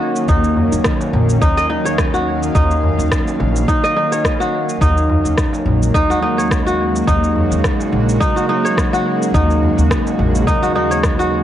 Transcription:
0.00 4.77 D#3 medium
0.00 11.43 F#3 medium
0.00 4.77 A#3 medium
0.00 4.77 C#4 medium
0.00 0.28 D#4 medium
0.00 0.24 F#4 medium
0.00 1.34 F#4 medium
0.00 0.74 C#5 medium
0.00 0.37 D#5 medium
0.16 shaker medium
0.28 0.67 D#2 medium
0.28 1.41 D#4 medium
0.28 4.77 F5 medium
0.28 kick loud
0.28 shaker medium
0.44 shaker soft
0.56 darbuka ka medium
0.56 darbuka dum medium
0.72 0.82 D#2 medium
0.72 shaker medium
0.84 kick loud
0.84 cross-stick loud
0.84 shaker medium
1.01 darbuka tek medium
1.01 shaker soft
1.13 1.36 A#1 medium
1.13 darbuka tek medium
1.13 darbuka dum medium
1.29 shaker medium
1.41 2.50 D#2 medium
1.41 1.69 D#4 loud
1.41 kick loud
1.41 shaker soft
1.57 2.64 D#5 medium
1.57 shaker soft
1.70 2.54 D#4 medium
1.70 darbuka tek medium
1.85 3.00 C#5 medium
1.85 shaker medium
1.98 kick loud
1.98 cross-stick loud
1.98 shaker medium
2.14 3.60 F#4 medium
2.14 shaker soft
2.43 darbuka ka soft
2.43 shaker medium
2.55 2.93 D#2 medium
2.55 3.68 D#4 medium
2.55 kick loud
2.55 shaker medium
2.71 shaker soft
2.83 darbuka ka medium
2.83 darbuka dum medium
2.99 3.09 D#2 medium
2.99 shaker medium
3.12 kick loud
3.12 cross-stick loud
3.12 shaker medium
3.28 darbuka tek medium
3.28 shaker soft
3.40 3.63 A#1 medium
3.40 darbuka tek medium
3.56 shaker medium
3.68 3.96 D#4 medium
3.68 kick loud
3.68 shaker medium
3.84 4.91 D#5 medium
3.84 shaker soft
3.96 4.81 D#4 medium
3.96 darbuka ka soft
4.12 5.27 C#5 medium
4.12 shaker medium
4.25 kick medium
4.25 cross-stick medium
4.25 shaker medium
4.40 5.86 F#4 medium
4.40 shaker soft
4.69 shaker medium
4.81 5.20 D#2 medium
4.81 11.43 C#3 medium
4.81 11.43 G#3 medium
4.81 11.43 A#3 medium
4.81 5.94 D#4 medium
4.81 11.43 F#4 medium
4.81 kick loud
4.81 shaker medium
4.98 shaker soft
5.09 darbuka ka medium
5.09 darbuka dum medium
5.25 5.35 D#2 medium
5.25 shaker medium
5.38 kick loud
5.38 cross-stick medium
5.38 shaker medium
5.53 darbuka tek medium
5.53 shaker soft
5.66 5.89 A#1 medium
5.66 darbuka tek medium
5.66 darbuka dum medium
5.83 shaker medium
5.94 6.22 D#4 loud
5.94 kick medium
5.94 shaker soft
6.10 6.66 F#4 medium
6.10 shaker soft
6.22 7.07 D#4 medium
6.22 darbuka tek medium
6.38 7.53 C#5 medium
6.38 shaker medium
6.51 kick loud
6.51 cross-stick medium
6.51 shaker medium
6.66 8.13 F#4 medium
6.66 shaker soft
6.95 darbuka ka soft
6.95 shaker medium
7.07 7.46 D#2 loud
7.07 8.20 D#4 medium
7.07 kick medium
7.07 shaker medium
7.24 shaker soft
7.36 darbuka ka medium
7.36 darbuka dum medium
7.51 7.61 D#2 medium
7.51 shaker medium
7.64 kick medium
7.64 cross-stick medium
7.64 shaker medium
7.80 darbuka tek medium
7.80 shaker soft
7.92 8.15 A#1 medium
7.92 darbuka tek medium
8.09 shaker medium
8.20 8.49 D#4 loud
8.20 kick medium
8.20 shaker soft
8.36 8.93 F#4 medium
8.36 shaker soft
8.49 9.34 D#4 medium
8.49 darbuka ka soft
8.65 9.79 C#5 medium
8.65 shaker medium
8.77 kick medium
8.77 cross-stick medium
8.77 shaker medium
8.93 10.39 F#4 medium
8.93 shaker soft
9.22 shaker medium
9.34 9.73 D#2 loud
9.34 10.47 D#4 medium
9.34 kick loud
9.34 shaker soft
9.50 shaker soft
9.62 darbuka ka medium
9.62 darbuka dum medium
9.78 9.88 D#2 medium
9.78 shaker medium
9.91 kick medium
9.91 cross-stick loud
9.91 shaker soft
10.07 darbuka tek medium
10.07 shaker soft
10.19 10.42 A#1 medium
10.19 darbuka tek medium
10.19 darbuka dum medium
10.35 shaker medium
10.47 11.43 D#2 medium
10.47 10.75 D#4 medium
10.47 kick medium
10.47 shaker soft
10.62 11.19 F#4 medium
10.62 shaker soft
10.75 11.43 D#4 medium
10.75 darbuka tek medium
10.91 11.43 C#5 medium
10.91 shaker medium
11.03 kick loud
11.03 cross-stick medium
11.03 shaker soft
11.19 11.43 F#4 medium
11.19 shaker soft

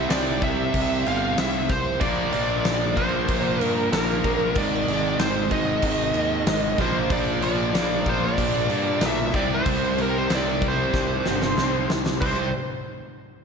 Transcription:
0.00 1.35 C3 loud
0.00 1.36 G3 loud
0.00 1.37 C4 loud
0.10 0.66 C2 medium
0.10 1.03 C3 medium
0.10 1.04 G3 medium
0.10 1.04 C4 medium
0.10 0.43 D5 medium
0.10 snare loud
0.10 crash loud
0.42 1.07 E5 loud
0.42 kick loud
0.42 crash medium
0.74 1.02 C2 loud
0.74 kick medium
0.74 crash medium
1.06 1.34 G1 medium
1.06 1.68 C3 medium
1.06 1.68 G3 medium
1.06 1.67 C4 medium
1.06 1.39 F5 loud
1.06 crash medium
1.38 1.66 C2 medium
1.38 1.67 C3 medium
1.38 1.68 G3 medium
1.38 1.69 C4 medium
1.38 1.71 E5 loud
1.38 snare loud
1.38 crash medium
1.69 1.97 C2 loud
1.69 1.99 C5 loud
1.69 kick medium
1.69 snare soft
1.69 crash medium
2.00 2.29 A#1 medium
2.00 2.94 A#2 loud
2.00 2.95 F3 medium
2.00 2.96 A#3 loud
2.00 2.31 D5 loud
2.00 kick loud
2.00 crash medium
2.32 2.62 A#1 medium
2.32 2.98 D5 loud
2.32 crash medium
2.65 2.93 A#1 medium
2.65 snare loud
2.65 crash medium
2.97 3.25 A#1 loud
2.97 3.92 A#2 medium
2.97 3.91 F3 medium
2.97 3.91 A#3 medium
2.97 3.61 C5 loud
2.97 kick medium
2.97 crash medium
3.28 3.56 A#1 loud
3.28 kick medium
3.28 crash medium
3.60 3.88 G2 medium
3.60 3.88 A#4 loud
3.60 crash medium
3.92 4.20 A#1 medium
3.92 4.54 A#2 medium
3.92 4.55 F3 medium
3.92 4.55 A#3 medium
3.92 4.58 A#4 medium
3.92 snare loud
3.92 crash medium
4.24 4.52 A#1 loud
4.24 4.55 A#2 medium
4.24 4.55 F3 medium
4.24 4.54 A#3 medium
4.24 kick medium
4.24 crash medium
4.55 4.84 G#1 loud
4.55 5.49 G#2 medium
4.55 5.50 D#3 loud
4.55 5.50 G#3 loud
4.55 5.16 D5 loud
4.55 kick loud
4.55 crash medium
4.88 5.15 G#1 loud
4.88 crash medium
5.19 5.75 G#1 loud
5.19 5.49 C5 medium
5.19 snare loud
5.19 crash medium
5.51 6.45 G#2 medium
5.51 6.46 D#3 medium
5.51 6.45 G#3 medium
5.51 6.83 D#5 loud
5.51 kick medium
5.51 crash medium
5.82 6.11 G#1 loud
5.82 kick medium
5.82 crash loud
6.14 6.43 D#2 medium
6.14 crash medium
6.46 6.74 G#1 medium
6.46 6.77 G#2 medium
6.46 6.77 D#3 medium
6.46 6.78 G#3 medium
6.46 snare loud
6.46 crash loud
6.78 7.07 A#1 loud
6.78 7.72 A#2 medium
6.78 7.73 F3 medium
6.78 7.73 A#3 loud
6.78 7.13 C5 loud
6.78 kick medium
6.78 snare soft
6.78 crash medium
7.10 7.39 A#1 loud
7.10 7.43 D5 loud
7.10 kick loud
7.10 crash medium
7.41 7.70 A#1 loud
7.41 8.09 D5 loud
7.41 crash medium
7.73 8.02 A#1 medium
7.73 8.68 A#2 medium
7.73 8.68 F3 medium
7.73 8.68 A#3 medium
7.73 snare loud
7.73 crash medium
8.06 8.35 A#1 medium
8.06 8.24 C5 medium
8.06 kick medium
8.06 crash medium
8.25 9.06 D5 loud
8.38 8.66 A#1 loud
8.38 kick medium
8.38 crash medium
8.69 8.98 G2 medium
8.69 9.33 A#2 medium
8.69 9.32 F3 medium
8.69 9.32 A#3 medium
8.69 crash medium
9.01 9.30 B1 medium
9.01 9.32 A#2 medium
9.01 9.33 F3 medium
9.01 snare loud
9.01 crash medium
9.05 9.34 A#3 medium
9.05 9.35 E5 loud
9.33 9.62 C2 loud
9.33 10.27 C3 medium
9.33 10.28 G3 medium
9.33 10.29 C4 loud
9.33 9.51 D5 loud
9.33 kick medium
9.33 snare soft
9.33 crash medium
9.54 10.01 C5 medium
9.66 9.94 C2 loud
9.66 kick loud
9.66 crash medium
9.98 10.26 C2 loud
9.98 10.18 A#4 medium
9.98 crash medium
10.18 10.32 C5 medium
10.29 10.86 C2 medium
10.29 11.24 C3 medium
10.29 11.24 G3 medium
10.29 11.24 C4 medium
10.29 snare loud
10.29 crash medium
10.35 10.65 D5 medium
10.62 kick medium
10.62 crash medium
10.68 11.89 C5 medium
10.94 11.22 C2 loud
10.94 kick medium
10.94 snare medium
11.25 11.54 G1 medium
11.25 11.88 C3 medium
11.25 11.88 G3 medium
11.25 11.88 C4 medium
11.25 snare medium
11.42 snare medium
11.58 11.86 C2 medium
11.58 11.88 C3 medium
11.58 11.90 G3 medium
11.58 snare medium
11.62 11.90 C4 medium
11.90 12.18 C2 medium
11.90 snare loud
12.06 snare loud
12.21 12.52 C2 medium
12.21 12.47 C3 loud
12.21 12.47 G3 loud
12.21 12.48 C4 loud
12.21 12.51 C5 medium
12.21 kick loud
12.21 crash medium

